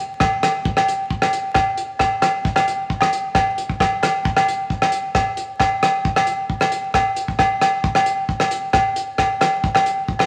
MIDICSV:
0, 0, Header, 1, 2, 480
1, 0, Start_track
1, 0, Tempo, 448766
1, 705, Time_signature, 4, 2, 24, 8
1, 10975, End_track
2, 0, Start_track
2, 0, Title_t, "Drums"
2, 215, Note_on_c, 9, 37, 68
2, 220, Note_on_c, 9, 36, 86
2, 221, Note_on_c, 9, 68, 62
2, 322, Note_off_c, 9, 37, 0
2, 327, Note_off_c, 9, 36, 0
2, 328, Note_off_c, 9, 68, 0
2, 460, Note_on_c, 9, 68, 60
2, 461, Note_on_c, 9, 37, 74
2, 461, Note_on_c, 9, 42, 50
2, 567, Note_off_c, 9, 68, 0
2, 568, Note_off_c, 9, 37, 0
2, 568, Note_off_c, 9, 42, 0
2, 699, Note_on_c, 9, 36, 86
2, 806, Note_off_c, 9, 36, 0
2, 821, Note_on_c, 9, 37, 63
2, 826, Note_on_c, 9, 68, 69
2, 928, Note_off_c, 9, 37, 0
2, 933, Note_off_c, 9, 68, 0
2, 946, Note_on_c, 9, 42, 52
2, 1053, Note_off_c, 9, 42, 0
2, 1182, Note_on_c, 9, 36, 67
2, 1289, Note_off_c, 9, 36, 0
2, 1304, Note_on_c, 9, 68, 64
2, 1305, Note_on_c, 9, 37, 67
2, 1410, Note_off_c, 9, 68, 0
2, 1412, Note_off_c, 9, 37, 0
2, 1422, Note_on_c, 9, 42, 54
2, 1529, Note_off_c, 9, 42, 0
2, 1651, Note_on_c, 9, 68, 64
2, 1657, Note_on_c, 9, 37, 62
2, 1660, Note_on_c, 9, 36, 90
2, 1758, Note_off_c, 9, 68, 0
2, 1764, Note_off_c, 9, 37, 0
2, 1767, Note_off_c, 9, 36, 0
2, 1898, Note_on_c, 9, 42, 51
2, 2005, Note_off_c, 9, 42, 0
2, 2131, Note_on_c, 9, 68, 60
2, 2136, Note_on_c, 9, 37, 69
2, 2139, Note_on_c, 9, 36, 67
2, 2238, Note_off_c, 9, 68, 0
2, 2243, Note_off_c, 9, 37, 0
2, 2246, Note_off_c, 9, 36, 0
2, 2373, Note_on_c, 9, 68, 57
2, 2377, Note_on_c, 9, 37, 70
2, 2377, Note_on_c, 9, 42, 46
2, 2480, Note_off_c, 9, 68, 0
2, 2484, Note_off_c, 9, 37, 0
2, 2484, Note_off_c, 9, 42, 0
2, 2620, Note_on_c, 9, 36, 92
2, 2727, Note_off_c, 9, 36, 0
2, 2736, Note_on_c, 9, 68, 72
2, 2740, Note_on_c, 9, 37, 65
2, 2842, Note_off_c, 9, 68, 0
2, 2847, Note_off_c, 9, 37, 0
2, 2864, Note_on_c, 9, 42, 47
2, 2971, Note_off_c, 9, 42, 0
2, 3102, Note_on_c, 9, 36, 67
2, 3209, Note_off_c, 9, 36, 0
2, 3215, Note_on_c, 9, 68, 59
2, 3228, Note_on_c, 9, 37, 72
2, 3322, Note_off_c, 9, 68, 0
2, 3335, Note_off_c, 9, 37, 0
2, 3346, Note_on_c, 9, 42, 46
2, 3453, Note_off_c, 9, 42, 0
2, 3581, Note_on_c, 9, 68, 62
2, 3583, Note_on_c, 9, 37, 65
2, 3584, Note_on_c, 9, 36, 84
2, 3688, Note_off_c, 9, 68, 0
2, 3690, Note_off_c, 9, 37, 0
2, 3691, Note_off_c, 9, 36, 0
2, 3829, Note_on_c, 9, 42, 52
2, 3936, Note_off_c, 9, 42, 0
2, 3952, Note_on_c, 9, 36, 64
2, 4059, Note_off_c, 9, 36, 0
2, 4067, Note_on_c, 9, 68, 66
2, 4068, Note_on_c, 9, 36, 67
2, 4073, Note_on_c, 9, 37, 60
2, 4174, Note_off_c, 9, 68, 0
2, 4175, Note_off_c, 9, 36, 0
2, 4180, Note_off_c, 9, 37, 0
2, 4307, Note_on_c, 9, 68, 60
2, 4313, Note_on_c, 9, 37, 71
2, 4313, Note_on_c, 9, 42, 53
2, 4414, Note_off_c, 9, 68, 0
2, 4420, Note_off_c, 9, 37, 0
2, 4420, Note_off_c, 9, 42, 0
2, 4548, Note_on_c, 9, 36, 90
2, 4655, Note_off_c, 9, 36, 0
2, 4669, Note_on_c, 9, 37, 69
2, 4670, Note_on_c, 9, 68, 75
2, 4776, Note_off_c, 9, 37, 0
2, 4777, Note_off_c, 9, 68, 0
2, 4796, Note_on_c, 9, 42, 52
2, 4903, Note_off_c, 9, 42, 0
2, 5029, Note_on_c, 9, 36, 70
2, 5136, Note_off_c, 9, 36, 0
2, 5154, Note_on_c, 9, 68, 56
2, 5155, Note_on_c, 9, 37, 71
2, 5261, Note_off_c, 9, 68, 0
2, 5262, Note_off_c, 9, 37, 0
2, 5262, Note_on_c, 9, 42, 56
2, 5369, Note_off_c, 9, 42, 0
2, 5506, Note_on_c, 9, 37, 69
2, 5508, Note_on_c, 9, 36, 90
2, 5509, Note_on_c, 9, 68, 61
2, 5613, Note_off_c, 9, 37, 0
2, 5615, Note_off_c, 9, 36, 0
2, 5616, Note_off_c, 9, 68, 0
2, 5744, Note_on_c, 9, 42, 53
2, 5851, Note_off_c, 9, 42, 0
2, 5984, Note_on_c, 9, 68, 65
2, 5990, Note_on_c, 9, 36, 70
2, 5994, Note_on_c, 9, 37, 61
2, 6091, Note_off_c, 9, 68, 0
2, 6097, Note_off_c, 9, 36, 0
2, 6101, Note_off_c, 9, 37, 0
2, 6231, Note_on_c, 9, 68, 61
2, 6233, Note_on_c, 9, 37, 74
2, 6233, Note_on_c, 9, 42, 49
2, 6338, Note_off_c, 9, 68, 0
2, 6340, Note_off_c, 9, 37, 0
2, 6340, Note_off_c, 9, 42, 0
2, 6471, Note_on_c, 9, 36, 88
2, 6578, Note_off_c, 9, 36, 0
2, 6592, Note_on_c, 9, 37, 70
2, 6595, Note_on_c, 9, 68, 74
2, 6699, Note_off_c, 9, 37, 0
2, 6702, Note_off_c, 9, 68, 0
2, 6704, Note_on_c, 9, 42, 47
2, 6811, Note_off_c, 9, 42, 0
2, 6948, Note_on_c, 9, 36, 65
2, 7055, Note_off_c, 9, 36, 0
2, 7069, Note_on_c, 9, 37, 67
2, 7076, Note_on_c, 9, 68, 58
2, 7176, Note_off_c, 9, 37, 0
2, 7182, Note_off_c, 9, 68, 0
2, 7186, Note_on_c, 9, 42, 51
2, 7293, Note_off_c, 9, 42, 0
2, 7424, Note_on_c, 9, 37, 65
2, 7426, Note_on_c, 9, 36, 82
2, 7433, Note_on_c, 9, 68, 64
2, 7531, Note_off_c, 9, 37, 0
2, 7533, Note_off_c, 9, 36, 0
2, 7540, Note_off_c, 9, 68, 0
2, 7663, Note_on_c, 9, 42, 51
2, 7770, Note_off_c, 9, 42, 0
2, 7790, Note_on_c, 9, 36, 58
2, 7897, Note_off_c, 9, 36, 0
2, 7902, Note_on_c, 9, 37, 64
2, 7906, Note_on_c, 9, 36, 68
2, 7906, Note_on_c, 9, 68, 67
2, 8009, Note_off_c, 9, 37, 0
2, 8013, Note_off_c, 9, 36, 0
2, 8013, Note_off_c, 9, 68, 0
2, 8144, Note_on_c, 9, 37, 67
2, 8144, Note_on_c, 9, 42, 49
2, 8149, Note_on_c, 9, 68, 62
2, 8251, Note_off_c, 9, 37, 0
2, 8251, Note_off_c, 9, 42, 0
2, 8256, Note_off_c, 9, 68, 0
2, 8385, Note_on_c, 9, 36, 90
2, 8492, Note_off_c, 9, 36, 0
2, 8504, Note_on_c, 9, 37, 72
2, 8512, Note_on_c, 9, 68, 73
2, 8611, Note_off_c, 9, 37, 0
2, 8619, Note_off_c, 9, 68, 0
2, 8622, Note_on_c, 9, 42, 50
2, 8729, Note_off_c, 9, 42, 0
2, 8865, Note_on_c, 9, 36, 67
2, 8972, Note_off_c, 9, 36, 0
2, 8984, Note_on_c, 9, 37, 67
2, 8991, Note_on_c, 9, 68, 57
2, 9091, Note_off_c, 9, 37, 0
2, 9098, Note_off_c, 9, 68, 0
2, 9103, Note_on_c, 9, 42, 56
2, 9210, Note_off_c, 9, 42, 0
2, 9340, Note_on_c, 9, 68, 69
2, 9343, Note_on_c, 9, 37, 65
2, 9346, Note_on_c, 9, 36, 90
2, 9447, Note_off_c, 9, 68, 0
2, 9450, Note_off_c, 9, 37, 0
2, 9453, Note_off_c, 9, 36, 0
2, 9585, Note_on_c, 9, 42, 55
2, 9692, Note_off_c, 9, 42, 0
2, 9822, Note_on_c, 9, 37, 64
2, 9824, Note_on_c, 9, 68, 62
2, 9825, Note_on_c, 9, 36, 65
2, 9929, Note_off_c, 9, 37, 0
2, 9931, Note_off_c, 9, 68, 0
2, 9932, Note_off_c, 9, 36, 0
2, 10063, Note_on_c, 9, 68, 58
2, 10068, Note_on_c, 9, 37, 76
2, 10068, Note_on_c, 9, 42, 53
2, 10170, Note_off_c, 9, 68, 0
2, 10175, Note_off_c, 9, 37, 0
2, 10175, Note_off_c, 9, 42, 0
2, 10308, Note_on_c, 9, 36, 93
2, 10415, Note_off_c, 9, 36, 0
2, 10425, Note_on_c, 9, 68, 70
2, 10434, Note_on_c, 9, 37, 72
2, 10532, Note_off_c, 9, 68, 0
2, 10541, Note_off_c, 9, 37, 0
2, 10547, Note_on_c, 9, 42, 51
2, 10654, Note_off_c, 9, 42, 0
2, 10787, Note_on_c, 9, 36, 69
2, 10894, Note_off_c, 9, 36, 0
2, 10901, Note_on_c, 9, 68, 59
2, 10911, Note_on_c, 9, 37, 71
2, 10975, Note_off_c, 9, 37, 0
2, 10975, Note_off_c, 9, 68, 0
2, 10975, End_track
0, 0, End_of_file